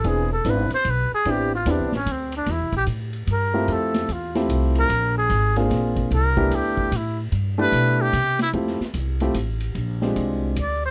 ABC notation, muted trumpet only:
X:1
M:3/4
L:1/8
Q:"Swing" 1/4=148
K:C
V:1 name="Muted trumpet"
^G A B c B G | G F D _D C =D | E G z2 _B2 | A2 F z2 _B- |
_B _A2 F z2 | _B2 G2 E z | z B2 G2 E | [K:F] z6 |
z4 d c |]